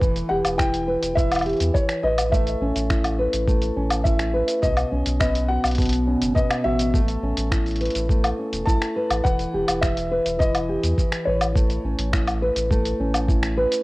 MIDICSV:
0, 0, Header, 1, 5, 480
1, 0, Start_track
1, 0, Tempo, 576923
1, 12, Time_signature, 4, 2, 24, 8
1, 11508, End_track
2, 0, Start_track
2, 0, Title_t, "Felt piano"
2, 0, Program_c, 0, 0
2, 241, Note_on_c, 0, 78, 96
2, 297, Note_off_c, 0, 78, 0
2, 482, Note_on_c, 0, 79, 113
2, 960, Note_on_c, 0, 76, 104
2, 982, Note_off_c, 0, 79, 0
2, 1448, Note_on_c, 0, 73, 85
2, 1461, Note_off_c, 0, 76, 0
2, 1690, Note_on_c, 0, 75, 89
2, 1697, Note_off_c, 0, 73, 0
2, 1914, Note_off_c, 0, 75, 0
2, 1927, Note_on_c, 0, 76, 88
2, 2857, Note_off_c, 0, 76, 0
2, 3360, Note_on_c, 0, 76, 82
2, 3813, Note_off_c, 0, 76, 0
2, 3845, Note_on_c, 0, 75, 93
2, 4312, Note_off_c, 0, 75, 0
2, 4324, Note_on_c, 0, 75, 92
2, 4564, Note_on_c, 0, 78, 101
2, 4576, Note_off_c, 0, 75, 0
2, 5284, Note_on_c, 0, 75, 98
2, 5310, Note_off_c, 0, 78, 0
2, 5526, Note_on_c, 0, 76, 104
2, 5535, Note_off_c, 0, 75, 0
2, 7201, Note_on_c, 0, 81, 112
2, 7260, Note_off_c, 0, 76, 0
2, 7686, Note_on_c, 0, 78, 112
2, 7701, Note_off_c, 0, 81, 0
2, 8136, Note_off_c, 0, 78, 0
2, 8165, Note_on_c, 0, 76, 91
2, 8615, Note_off_c, 0, 76, 0
2, 8645, Note_on_c, 0, 75, 102
2, 9362, Note_on_c, 0, 73, 81
2, 9391, Note_off_c, 0, 75, 0
2, 10294, Note_off_c, 0, 73, 0
2, 11508, End_track
3, 0, Start_track
3, 0, Title_t, "Nylon-string guitar"
3, 0, Program_c, 1, 24
3, 0, Note_on_c, 1, 64, 64
3, 0, Note_on_c, 1, 71, 67
3, 11, Note_on_c, 1, 52, 85
3, 252, Note_on_c, 1, 67, 67
3, 488, Note_off_c, 1, 64, 0
3, 491, Note_on_c, 1, 64, 74
3, 726, Note_off_c, 1, 71, 0
3, 730, Note_on_c, 1, 71, 66
3, 968, Note_off_c, 1, 52, 0
3, 972, Note_on_c, 1, 52, 79
3, 1204, Note_off_c, 1, 67, 0
3, 1214, Note_on_c, 1, 67, 62
3, 1452, Note_off_c, 1, 64, 0
3, 1455, Note_on_c, 1, 64, 68
3, 1692, Note_off_c, 1, 71, 0
3, 1695, Note_on_c, 1, 71, 69
3, 1931, Note_off_c, 1, 52, 0
3, 1934, Note_on_c, 1, 57, 85
3, 1981, Note_off_c, 1, 67, 0
3, 2175, Note_on_c, 1, 61, 67
3, 2200, Note_off_c, 1, 71, 0
3, 2411, Note_off_c, 1, 64, 0
3, 2414, Note_on_c, 1, 64, 72
3, 2652, Note_on_c, 1, 71, 67
3, 2883, Note_off_c, 1, 57, 0
3, 2893, Note_on_c, 1, 57, 81
3, 3129, Note_off_c, 1, 61, 0
3, 3132, Note_on_c, 1, 61, 61
3, 3362, Note_off_c, 1, 64, 0
3, 3372, Note_on_c, 1, 64, 70
3, 3606, Note_off_c, 1, 71, 0
3, 3610, Note_on_c, 1, 71, 71
3, 3850, Note_on_c, 1, 47, 84
3, 3900, Note_off_c, 1, 64, 0
3, 3901, Note_off_c, 1, 57, 0
3, 4087, Note_off_c, 1, 61, 0
3, 4090, Note_on_c, 1, 61, 67
3, 4115, Note_off_c, 1, 71, 0
3, 4329, Note_on_c, 1, 59, 68
3, 4569, Note_on_c, 1, 66, 67
3, 4800, Note_off_c, 1, 47, 0
3, 4810, Note_on_c, 1, 47, 83
3, 5048, Note_off_c, 1, 61, 0
3, 5051, Note_on_c, 1, 61, 59
3, 5288, Note_off_c, 1, 59, 0
3, 5291, Note_on_c, 1, 59, 65
3, 5519, Note_off_c, 1, 66, 0
3, 5529, Note_on_c, 1, 66, 76
3, 5767, Note_off_c, 1, 59, 0
3, 5770, Note_on_c, 1, 57, 86
3, 5819, Note_off_c, 1, 47, 0
3, 5819, Note_off_c, 1, 66, 0
3, 6011, Note_off_c, 1, 61, 0
3, 6014, Note_on_c, 1, 61, 67
3, 6252, Note_on_c, 1, 64, 74
3, 6494, Note_on_c, 1, 71, 63
3, 6725, Note_off_c, 1, 57, 0
3, 6735, Note_on_c, 1, 57, 81
3, 6964, Note_off_c, 1, 61, 0
3, 6974, Note_on_c, 1, 61, 61
3, 7210, Note_off_c, 1, 64, 0
3, 7213, Note_on_c, 1, 64, 67
3, 7451, Note_off_c, 1, 71, 0
3, 7455, Note_on_c, 1, 71, 72
3, 7692, Note_off_c, 1, 57, 0
3, 7695, Note_on_c, 1, 52, 82
3, 7742, Note_off_c, 1, 61, 0
3, 7937, Note_on_c, 1, 67, 66
3, 8169, Note_off_c, 1, 64, 0
3, 8172, Note_on_c, 1, 64, 67
3, 8412, Note_off_c, 1, 71, 0
3, 8416, Note_on_c, 1, 71, 71
3, 8651, Note_off_c, 1, 52, 0
3, 8654, Note_on_c, 1, 52, 83
3, 8886, Note_off_c, 1, 67, 0
3, 8896, Note_on_c, 1, 67, 59
3, 9133, Note_off_c, 1, 64, 0
3, 9137, Note_on_c, 1, 64, 64
3, 9373, Note_off_c, 1, 71, 0
3, 9376, Note_on_c, 1, 71, 74
3, 9615, Note_off_c, 1, 52, 0
3, 9618, Note_on_c, 1, 57, 81
3, 9662, Note_off_c, 1, 67, 0
3, 9859, Note_on_c, 1, 61, 68
3, 9884, Note_off_c, 1, 71, 0
3, 10094, Note_off_c, 1, 64, 0
3, 10097, Note_on_c, 1, 64, 75
3, 10337, Note_on_c, 1, 71, 70
3, 10565, Note_off_c, 1, 57, 0
3, 10575, Note_on_c, 1, 57, 88
3, 10812, Note_off_c, 1, 61, 0
3, 10815, Note_on_c, 1, 61, 60
3, 11046, Note_off_c, 1, 64, 0
3, 11056, Note_on_c, 1, 64, 65
3, 11290, Note_off_c, 1, 71, 0
3, 11294, Note_on_c, 1, 71, 78
3, 11508, Note_off_c, 1, 57, 0
3, 11508, Note_off_c, 1, 61, 0
3, 11508, Note_off_c, 1, 64, 0
3, 11508, Note_off_c, 1, 71, 0
3, 11508, End_track
4, 0, Start_track
4, 0, Title_t, "Sub bass"
4, 0, Program_c, 2, 38
4, 12, Note_on_c, 2, 28, 104
4, 188, Note_off_c, 2, 28, 0
4, 253, Note_on_c, 2, 28, 94
4, 341, Note_off_c, 2, 28, 0
4, 371, Note_on_c, 2, 28, 97
4, 800, Note_off_c, 2, 28, 0
4, 852, Note_on_c, 2, 28, 76
4, 1281, Note_off_c, 2, 28, 0
4, 1333, Note_on_c, 2, 40, 96
4, 1421, Note_off_c, 2, 40, 0
4, 1691, Note_on_c, 2, 33, 89
4, 2120, Note_off_c, 2, 33, 0
4, 2169, Note_on_c, 2, 33, 88
4, 2259, Note_off_c, 2, 33, 0
4, 2292, Note_on_c, 2, 33, 92
4, 2721, Note_off_c, 2, 33, 0
4, 2772, Note_on_c, 2, 33, 80
4, 3081, Note_off_c, 2, 33, 0
4, 3131, Note_on_c, 2, 33, 82
4, 3681, Note_off_c, 2, 33, 0
4, 3852, Note_on_c, 2, 35, 103
4, 4028, Note_off_c, 2, 35, 0
4, 4094, Note_on_c, 2, 35, 87
4, 4181, Note_off_c, 2, 35, 0
4, 4213, Note_on_c, 2, 35, 100
4, 4641, Note_off_c, 2, 35, 0
4, 4693, Note_on_c, 2, 35, 88
4, 5121, Note_off_c, 2, 35, 0
4, 5170, Note_on_c, 2, 30, 96
4, 5259, Note_off_c, 2, 30, 0
4, 5533, Note_on_c, 2, 33, 84
4, 5961, Note_off_c, 2, 33, 0
4, 6011, Note_on_c, 2, 33, 98
4, 6100, Note_off_c, 2, 33, 0
4, 6133, Note_on_c, 2, 33, 95
4, 6561, Note_off_c, 2, 33, 0
4, 6615, Note_on_c, 2, 33, 83
4, 6922, Note_off_c, 2, 33, 0
4, 7093, Note_on_c, 2, 28, 96
4, 7180, Note_off_c, 2, 28, 0
4, 7213, Note_on_c, 2, 33, 84
4, 7301, Note_off_c, 2, 33, 0
4, 7572, Note_on_c, 2, 33, 90
4, 7660, Note_off_c, 2, 33, 0
4, 7694, Note_on_c, 2, 28, 98
4, 7869, Note_off_c, 2, 28, 0
4, 7934, Note_on_c, 2, 28, 91
4, 8021, Note_off_c, 2, 28, 0
4, 8054, Note_on_c, 2, 28, 95
4, 8482, Note_off_c, 2, 28, 0
4, 8534, Note_on_c, 2, 28, 82
4, 8962, Note_off_c, 2, 28, 0
4, 9013, Note_on_c, 2, 40, 93
4, 9101, Note_off_c, 2, 40, 0
4, 9375, Note_on_c, 2, 33, 90
4, 9802, Note_off_c, 2, 33, 0
4, 9852, Note_on_c, 2, 33, 93
4, 9940, Note_off_c, 2, 33, 0
4, 9971, Note_on_c, 2, 33, 97
4, 10400, Note_off_c, 2, 33, 0
4, 10449, Note_on_c, 2, 33, 79
4, 10759, Note_off_c, 2, 33, 0
4, 10812, Note_on_c, 2, 33, 75
4, 11361, Note_off_c, 2, 33, 0
4, 11508, End_track
5, 0, Start_track
5, 0, Title_t, "Drums"
5, 13, Note_on_c, 9, 36, 116
5, 19, Note_on_c, 9, 69, 51
5, 96, Note_off_c, 9, 36, 0
5, 103, Note_off_c, 9, 69, 0
5, 132, Note_on_c, 9, 42, 30
5, 139, Note_on_c, 9, 69, 34
5, 215, Note_off_c, 9, 42, 0
5, 222, Note_off_c, 9, 69, 0
5, 371, Note_on_c, 9, 42, 52
5, 371, Note_on_c, 9, 77, 74
5, 378, Note_on_c, 9, 69, 65
5, 454, Note_off_c, 9, 42, 0
5, 454, Note_off_c, 9, 77, 0
5, 461, Note_off_c, 9, 69, 0
5, 492, Note_on_c, 9, 26, 73
5, 493, Note_on_c, 9, 36, 99
5, 499, Note_on_c, 9, 69, 57
5, 575, Note_off_c, 9, 26, 0
5, 576, Note_off_c, 9, 36, 0
5, 582, Note_off_c, 9, 69, 0
5, 613, Note_on_c, 9, 42, 44
5, 620, Note_on_c, 9, 69, 35
5, 696, Note_off_c, 9, 42, 0
5, 703, Note_off_c, 9, 69, 0
5, 853, Note_on_c, 9, 42, 56
5, 860, Note_on_c, 9, 69, 65
5, 936, Note_off_c, 9, 42, 0
5, 943, Note_off_c, 9, 69, 0
5, 973, Note_on_c, 9, 36, 105
5, 980, Note_on_c, 9, 69, 54
5, 1056, Note_off_c, 9, 36, 0
5, 1063, Note_off_c, 9, 69, 0
5, 1095, Note_on_c, 9, 42, 41
5, 1095, Note_on_c, 9, 77, 79
5, 1101, Note_on_c, 9, 69, 34
5, 1124, Note_off_c, 9, 42, 0
5, 1124, Note_on_c, 9, 42, 35
5, 1132, Note_off_c, 9, 77, 0
5, 1132, Note_on_c, 9, 77, 59
5, 1156, Note_off_c, 9, 42, 0
5, 1156, Note_on_c, 9, 42, 29
5, 1175, Note_off_c, 9, 77, 0
5, 1175, Note_on_c, 9, 77, 53
5, 1183, Note_off_c, 9, 42, 0
5, 1183, Note_on_c, 9, 42, 22
5, 1185, Note_off_c, 9, 69, 0
5, 1214, Note_off_c, 9, 42, 0
5, 1214, Note_on_c, 9, 42, 19
5, 1243, Note_off_c, 9, 42, 0
5, 1243, Note_on_c, 9, 42, 15
5, 1258, Note_off_c, 9, 77, 0
5, 1274, Note_off_c, 9, 42, 0
5, 1274, Note_on_c, 9, 42, 13
5, 1303, Note_off_c, 9, 42, 0
5, 1303, Note_on_c, 9, 42, 10
5, 1333, Note_off_c, 9, 42, 0
5, 1333, Note_on_c, 9, 42, 52
5, 1340, Note_on_c, 9, 69, 68
5, 1417, Note_off_c, 9, 42, 0
5, 1423, Note_off_c, 9, 69, 0
5, 1453, Note_on_c, 9, 36, 104
5, 1460, Note_on_c, 9, 69, 54
5, 1536, Note_off_c, 9, 36, 0
5, 1543, Note_off_c, 9, 69, 0
5, 1571, Note_on_c, 9, 26, 79
5, 1571, Note_on_c, 9, 42, 32
5, 1578, Note_on_c, 9, 69, 34
5, 1654, Note_off_c, 9, 26, 0
5, 1654, Note_off_c, 9, 42, 0
5, 1661, Note_off_c, 9, 69, 0
5, 1814, Note_on_c, 9, 42, 53
5, 1814, Note_on_c, 9, 77, 72
5, 1820, Note_on_c, 9, 69, 64
5, 1897, Note_off_c, 9, 42, 0
5, 1897, Note_off_c, 9, 77, 0
5, 1903, Note_off_c, 9, 69, 0
5, 1933, Note_on_c, 9, 36, 106
5, 1941, Note_on_c, 9, 69, 51
5, 2016, Note_off_c, 9, 36, 0
5, 2024, Note_off_c, 9, 69, 0
5, 2054, Note_on_c, 9, 42, 32
5, 2060, Note_on_c, 9, 69, 33
5, 2137, Note_off_c, 9, 42, 0
5, 2144, Note_off_c, 9, 69, 0
5, 2294, Note_on_c, 9, 42, 53
5, 2301, Note_on_c, 9, 69, 65
5, 2377, Note_off_c, 9, 42, 0
5, 2384, Note_off_c, 9, 69, 0
5, 2413, Note_on_c, 9, 36, 96
5, 2414, Note_on_c, 9, 26, 75
5, 2421, Note_on_c, 9, 69, 55
5, 2496, Note_off_c, 9, 36, 0
5, 2497, Note_off_c, 9, 26, 0
5, 2504, Note_off_c, 9, 69, 0
5, 2532, Note_on_c, 9, 42, 45
5, 2532, Note_on_c, 9, 77, 75
5, 2539, Note_on_c, 9, 69, 34
5, 2615, Note_off_c, 9, 42, 0
5, 2615, Note_off_c, 9, 77, 0
5, 2622, Note_off_c, 9, 69, 0
5, 2772, Note_on_c, 9, 42, 60
5, 2779, Note_on_c, 9, 69, 72
5, 2855, Note_off_c, 9, 42, 0
5, 2862, Note_off_c, 9, 69, 0
5, 2893, Note_on_c, 9, 36, 97
5, 2897, Note_on_c, 9, 69, 48
5, 2976, Note_off_c, 9, 36, 0
5, 2980, Note_off_c, 9, 69, 0
5, 3010, Note_on_c, 9, 42, 43
5, 3017, Note_on_c, 9, 69, 34
5, 3093, Note_off_c, 9, 42, 0
5, 3100, Note_off_c, 9, 69, 0
5, 3249, Note_on_c, 9, 42, 50
5, 3249, Note_on_c, 9, 77, 78
5, 3256, Note_on_c, 9, 69, 64
5, 3332, Note_off_c, 9, 42, 0
5, 3332, Note_off_c, 9, 77, 0
5, 3339, Note_off_c, 9, 69, 0
5, 3372, Note_on_c, 9, 36, 99
5, 3375, Note_on_c, 9, 69, 59
5, 3455, Note_off_c, 9, 36, 0
5, 3458, Note_off_c, 9, 69, 0
5, 3489, Note_on_c, 9, 26, 76
5, 3489, Note_on_c, 9, 42, 31
5, 3496, Note_on_c, 9, 69, 32
5, 3573, Note_off_c, 9, 26, 0
5, 3573, Note_off_c, 9, 42, 0
5, 3580, Note_off_c, 9, 69, 0
5, 3728, Note_on_c, 9, 42, 56
5, 3735, Note_on_c, 9, 69, 62
5, 3811, Note_off_c, 9, 42, 0
5, 3818, Note_off_c, 9, 69, 0
5, 3853, Note_on_c, 9, 36, 100
5, 3853, Note_on_c, 9, 69, 55
5, 3936, Note_off_c, 9, 36, 0
5, 3937, Note_off_c, 9, 69, 0
5, 3968, Note_on_c, 9, 42, 32
5, 3968, Note_on_c, 9, 77, 83
5, 3975, Note_on_c, 9, 69, 30
5, 4051, Note_off_c, 9, 42, 0
5, 4051, Note_off_c, 9, 77, 0
5, 4058, Note_off_c, 9, 69, 0
5, 4209, Note_on_c, 9, 42, 61
5, 4216, Note_on_c, 9, 69, 59
5, 4292, Note_off_c, 9, 42, 0
5, 4299, Note_off_c, 9, 69, 0
5, 4331, Note_on_c, 9, 26, 83
5, 4332, Note_on_c, 9, 36, 98
5, 4338, Note_on_c, 9, 69, 58
5, 4414, Note_off_c, 9, 26, 0
5, 4415, Note_off_c, 9, 36, 0
5, 4421, Note_off_c, 9, 69, 0
5, 4453, Note_on_c, 9, 42, 48
5, 4460, Note_on_c, 9, 69, 32
5, 4536, Note_off_c, 9, 42, 0
5, 4543, Note_off_c, 9, 69, 0
5, 4692, Note_on_c, 9, 42, 28
5, 4692, Note_on_c, 9, 77, 86
5, 4699, Note_on_c, 9, 69, 64
5, 4724, Note_off_c, 9, 42, 0
5, 4724, Note_on_c, 9, 42, 30
5, 4754, Note_off_c, 9, 42, 0
5, 4754, Note_on_c, 9, 42, 34
5, 4775, Note_off_c, 9, 77, 0
5, 4782, Note_off_c, 9, 69, 0
5, 4784, Note_off_c, 9, 42, 0
5, 4784, Note_on_c, 9, 42, 38
5, 4812, Note_off_c, 9, 42, 0
5, 4812, Note_on_c, 9, 36, 102
5, 4812, Note_on_c, 9, 42, 37
5, 4819, Note_on_c, 9, 69, 49
5, 4842, Note_off_c, 9, 42, 0
5, 4842, Note_on_c, 9, 42, 44
5, 4873, Note_off_c, 9, 42, 0
5, 4873, Note_on_c, 9, 42, 50
5, 4896, Note_off_c, 9, 36, 0
5, 4902, Note_off_c, 9, 69, 0
5, 4903, Note_off_c, 9, 42, 0
5, 4903, Note_on_c, 9, 42, 50
5, 4932, Note_off_c, 9, 42, 0
5, 4932, Note_on_c, 9, 42, 47
5, 4939, Note_on_c, 9, 69, 33
5, 5015, Note_off_c, 9, 42, 0
5, 5022, Note_off_c, 9, 69, 0
5, 5173, Note_on_c, 9, 42, 57
5, 5180, Note_on_c, 9, 69, 62
5, 5256, Note_off_c, 9, 42, 0
5, 5263, Note_off_c, 9, 69, 0
5, 5293, Note_on_c, 9, 36, 105
5, 5300, Note_on_c, 9, 69, 52
5, 5376, Note_off_c, 9, 36, 0
5, 5383, Note_off_c, 9, 69, 0
5, 5413, Note_on_c, 9, 26, 76
5, 5413, Note_on_c, 9, 42, 34
5, 5413, Note_on_c, 9, 77, 81
5, 5420, Note_on_c, 9, 69, 32
5, 5496, Note_off_c, 9, 26, 0
5, 5496, Note_off_c, 9, 42, 0
5, 5496, Note_off_c, 9, 77, 0
5, 5503, Note_off_c, 9, 69, 0
5, 5651, Note_on_c, 9, 42, 57
5, 5658, Note_on_c, 9, 69, 61
5, 5734, Note_off_c, 9, 42, 0
5, 5741, Note_off_c, 9, 69, 0
5, 5773, Note_on_c, 9, 36, 104
5, 5780, Note_on_c, 9, 69, 50
5, 5856, Note_off_c, 9, 36, 0
5, 5863, Note_off_c, 9, 69, 0
5, 5892, Note_on_c, 9, 42, 34
5, 5899, Note_on_c, 9, 69, 33
5, 5975, Note_off_c, 9, 42, 0
5, 5982, Note_off_c, 9, 69, 0
5, 6132, Note_on_c, 9, 42, 63
5, 6139, Note_on_c, 9, 69, 60
5, 6215, Note_off_c, 9, 42, 0
5, 6222, Note_off_c, 9, 69, 0
5, 6253, Note_on_c, 9, 36, 101
5, 6255, Note_on_c, 9, 26, 83
5, 6261, Note_on_c, 9, 69, 59
5, 6336, Note_off_c, 9, 36, 0
5, 6338, Note_off_c, 9, 26, 0
5, 6345, Note_off_c, 9, 69, 0
5, 6374, Note_on_c, 9, 42, 21
5, 6381, Note_on_c, 9, 69, 33
5, 6414, Note_off_c, 9, 42, 0
5, 6414, Note_on_c, 9, 42, 25
5, 6454, Note_off_c, 9, 42, 0
5, 6454, Note_on_c, 9, 42, 30
5, 6464, Note_off_c, 9, 69, 0
5, 6496, Note_off_c, 9, 42, 0
5, 6496, Note_on_c, 9, 42, 32
5, 6535, Note_off_c, 9, 42, 0
5, 6535, Note_on_c, 9, 42, 33
5, 6576, Note_off_c, 9, 42, 0
5, 6576, Note_on_c, 9, 42, 36
5, 6615, Note_off_c, 9, 42, 0
5, 6615, Note_on_c, 9, 42, 66
5, 6622, Note_on_c, 9, 69, 68
5, 6698, Note_off_c, 9, 42, 0
5, 6705, Note_off_c, 9, 69, 0
5, 6733, Note_on_c, 9, 36, 103
5, 6742, Note_on_c, 9, 69, 50
5, 6816, Note_off_c, 9, 36, 0
5, 6825, Note_off_c, 9, 69, 0
5, 6856, Note_on_c, 9, 42, 49
5, 6856, Note_on_c, 9, 77, 84
5, 6863, Note_on_c, 9, 69, 33
5, 6939, Note_off_c, 9, 42, 0
5, 6939, Note_off_c, 9, 77, 0
5, 6946, Note_off_c, 9, 69, 0
5, 7095, Note_on_c, 9, 42, 59
5, 7102, Note_on_c, 9, 69, 66
5, 7178, Note_off_c, 9, 42, 0
5, 7185, Note_off_c, 9, 69, 0
5, 7214, Note_on_c, 9, 36, 98
5, 7223, Note_on_c, 9, 69, 59
5, 7297, Note_off_c, 9, 36, 0
5, 7306, Note_off_c, 9, 69, 0
5, 7336, Note_on_c, 9, 26, 77
5, 7336, Note_on_c, 9, 42, 34
5, 7343, Note_on_c, 9, 69, 33
5, 7419, Note_off_c, 9, 26, 0
5, 7419, Note_off_c, 9, 42, 0
5, 7426, Note_off_c, 9, 69, 0
5, 7575, Note_on_c, 9, 42, 53
5, 7575, Note_on_c, 9, 77, 78
5, 7582, Note_on_c, 9, 69, 63
5, 7658, Note_off_c, 9, 42, 0
5, 7658, Note_off_c, 9, 77, 0
5, 7665, Note_off_c, 9, 69, 0
5, 7694, Note_on_c, 9, 36, 107
5, 7702, Note_on_c, 9, 69, 53
5, 7778, Note_off_c, 9, 36, 0
5, 7785, Note_off_c, 9, 69, 0
5, 7814, Note_on_c, 9, 42, 31
5, 7821, Note_on_c, 9, 69, 32
5, 7897, Note_off_c, 9, 42, 0
5, 7904, Note_off_c, 9, 69, 0
5, 8054, Note_on_c, 9, 42, 63
5, 8054, Note_on_c, 9, 77, 76
5, 8061, Note_on_c, 9, 69, 69
5, 8137, Note_off_c, 9, 42, 0
5, 8137, Note_off_c, 9, 77, 0
5, 8144, Note_off_c, 9, 69, 0
5, 8174, Note_on_c, 9, 36, 105
5, 8175, Note_on_c, 9, 26, 85
5, 8182, Note_on_c, 9, 69, 58
5, 8257, Note_off_c, 9, 36, 0
5, 8258, Note_off_c, 9, 26, 0
5, 8265, Note_off_c, 9, 69, 0
5, 8295, Note_on_c, 9, 42, 46
5, 8302, Note_on_c, 9, 69, 33
5, 8379, Note_off_c, 9, 42, 0
5, 8385, Note_off_c, 9, 69, 0
5, 8535, Note_on_c, 9, 42, 62
5, 8542, Note_on_c, 9, 69, 72
5, 8618, Note_off_c, 9, 42, 0
5, 8625, Note_off_c, 9, 69, 0
5, 8655, Note_on_c, 9, 36, 101
5, 8663, Note_on_c, 9, 69, 57
5, 8738, Note_off_c, 9, 36, 0
5, 8746, Note_off_c, 9, 69, 0
5, 8775, Note_on_c, 9, 42, 47
5, 8775, Note_on_c, 9, 77, 75
5, 8782, Note_on_c, 9, 69, 35
5, 8859, Note_off_c, 9, 42, 0
5, 8859, Note_off_c, 9, 77, 0
5, 8865, Note_off_c, 9, 69, 0
5, 9014, Note_on_c, 9, 42, 60
5, 9021, Note_on_c, 9, 69, 68
5, 9098, Note_off_c, 9, 42, 0
5, 9104, Note_off_c, 9, 69, 0
5, 9134, Note_on_c, 9, 36, 99
5, 9139, Note_on_c, 9, 69, 55
5, 9217, Note_off_c, 9, 36, 0
5, 9222, Note_off_c, 9, 69, 0
5, 9253, Note_on_c, 9, 26, 84
5, 9253, Note_on_c, 9, 42, 34
5, 9259, Note_on_c, 9, 69, 34
5, 9336, Note_off_c, 9, 26, 0
5, 9336, Note_off_c, 9, 42, 0
5, 9343, Note_off_c, 9, 69, 0
5, 9493, Note_on_c, 9, 42, 58
5, 9493, Note_on_c, 9, 77, 78
5, 9500, Note_on_c, 9, 69, 70
5, 9576, Note_off_c, 9, 42, 0
5, 9576, Note_off_c, 9, 77, 0
5, 9583, Note_off_c, 9, 69, 0
5, 9614, Note_on_c, 9, 36, 116
5, 9620, Note_on_c, 9, 69, 59
5, 9697, Note_off_c, 9, 36, 0
5, 9703, Note_off_c, 9, 69, 0
5, 9733, Note_on_c, 9, 42, 31
5, 9740, Note_on_c, 9, 69, 35
5, 9816, Note_off_c, 9, 42, 0
5, 9823, Note_off_c, 9, 69, 0
5, 9973, Note_on_c, 9, 42, 58
5, 10056, Note_off_c, 9, 42, 0
5, 10093, Note_on_c, 9, 36, 107
5, 10094, Note_on_c, 9, 26, 92
5, 10101, Note_on_c, 9, 69, 60
5, 10176, Note_off_c, 9, 36, 0
5, 10177, Note_off_c, 9, 26, 0
5, 10184, Note_off_c, 9, 69, 0
5, 10213, Note_on_c, 9, 42, 45
5, 10213, Note_on_c, 9, 77, 75
5, 10220, Note_on_c, 9, 69, 34
5, 10296, Note_off_c, 9, 42, 0
5, 10296, Note_off_c, 9, 77, 0
5, 10303, Note_off_c, 9, 69, 0
5, 10452, Note_on_c, 9, 42, 57
5, 10458, Note_on_c, 9, 69, 76
5, 10535, Note_off_c, 9, 42, 0
5, 10542, Note_off_c, 9, 69, 0
5, 10572, Note_on_c, 9, 36, 116
5, 10580, Note_on_c, 9, 69, 57
5, 10656, Note_off_c, 9, 36, 0
5, 10663, Note_off_c, 9, 69, 0
5, 10695, Note_on_c, 9, 42, 44
5, 10701, Note_on_c, 9, 69, 36
5, 10778, Note_off_c, 9, 42, 0
5, 10785, Note_off_c, 9, 69, 0
5, 10934, Note_on_c, 9, 42, 58
5, 10934, Note_on_c, 9, 77, 72
5, 10941, Note_on_c, 9, 69, 69
5, 11017, Note_off_c, 9, 42, 0
5, 11017, Note_off_c, 9, 77, 0
5, 11024, Note_off_c, 9, 69, 0
5, 11053, Note_on_c, 9, 36, 114
5, 11059, Note_on_c, 9, 69, 58
5, 11136, Note_off_c, 9, 36, 0
5, 11142, Note_off_c, 9, 69, 0
5, 11172, Note_on_c, 9, 26, 84
5, 11172, Note_on_c, 9, 42, 32
5, 11179, Note_on_c, 9, 69, 39
5, 11255, Note_off_c, 9, 26, 0
5, 11255, Note_off_c, 9, 42, 0
5, 11262, Note_off_c, 9, 69, 0
5, 11413, Note_on_c, 9, 42, 61
5, 11420, Note_on_c, 9, 69, 69
5, 11496, Note_off_c, 9, 42, 0
5, 11503, Note_off_c, 9, 69, 0
5, 11508, End_track
0, 0, End_of_file